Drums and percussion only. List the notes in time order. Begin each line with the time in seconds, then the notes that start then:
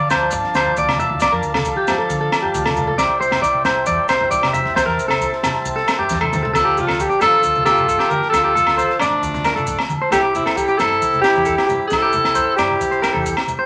0.10 snare, low conga, low agogo, maracas
0.31 kick, maracas
0.44 snare
0.54 snare, low agogo, maracas
0.65 low conga
0.77 kick, maracas
0.87 snare, high conga, low agogo
0.99 high conga, low conga, maracas
1.09 high conga
1.20 kick, snare, low agogo, maracas
1.43 maracas
1.54 snare, high conga, low agogo
1.65 kick, maracas
1.87 snare, low conga, low agogo, maracas
2.10 kick, maracas
2.32 snare, low agogo, maracas
2.44 low conga
2.54 kick, maracas
2.64 snare, high conga, low agogo
2.76 high conga, low conga, maracas
2.87 high conga
2.98 kick, snare, low agogo, maracas
3.22 maracas
3.31 snare, high conga, low agogo
3.43 kick, maracas
3.65 snare, low conga, low agogo, maracas
3.86 kick, maracas
4.08 snare, low agogo, maracas
4.21 low conga
4.31 kick, maracas
4.42 snare, high conga, low agogo
4.54 high conga, low conga, maracas
4.66 snare, high conga
4.76 kick, snare, low agogo, maracas
4.88 snare
4.99 maracas
5.09 snare, high conga, low agogo
5.21 kick, maracas
5.32 snare
5.43 snare, high conga, low conga, low agogo, maracas
5.54 snare
5.65 kick, maracas
5.77 snare
5.88 snare, low agogo, maracas
5.99 low conga
6.09 kick, snare, maracas
6.21 high conga, low agogo
6.33 mid tom, high conga, low conga, maracas
6.45 floor tom, high conga
6.55 kick, snare, crash, low agogo, maracas
6.77 high conga, low conga, maracas
6.88 snare, low agogo
7.00 kick, maracas
7.11 maracas
7.21 snare, low conga, low agogo, maracas
7.43 kick, maracas
7.55 high conga, maracas
7.66 snare, low agogo, maracas
7.78 high conga, maracas
7.89 kick, maracas
8.00 snare, low agogo
8.11 low conga, maracas
8.22 snare
8.34 kick, snare, low agogo, maracas
8.56 high conga, low conga, maracas
8.67 snare, low agogo
8.78 kick, maracas
8.90 snare, maracas
8.99 snare, low conga, low agogo, maracas
9.23 kick, maracas
9.34 snare, high conga, maracas
9.44 snare, low agogo, maracas
9.57 high conga, maracas
9.67 kick, maracas
9.79 snare, low agogo
9.90 low conga, maracas
10.12 kick, snare, low agogo, maracas
10.35 high conga, low conga, maracas
10.46 snare, low agogo
10.57 kick, maracas
10.68 maracas
10.79 snare, low conga, low agogo, maracas
10.91 snare
11.02 kick, maracas
11.13 high conga, maracas
11.24 snare, low agogo, maracas
11.35 high conga, maracas
11.45 kick, maracas
11.58 snare, low agogo
11.69 low conga, maracas
11.90 kick, snare, low agogo, maracas
12.13 high conga, low conga, maracas
12.25 snare, low agogo
12.35 kick, low conga, maracas
12.58 snare, low conga, low agogo, maracas
12.70 high conga
12.81 kick, maracas
12.92 maracas
13.03 snare, low agogo, maracas
13.14 high conga
13.26 kick, maracas
13.37 snare, low agogo
13.48 low conga, maracas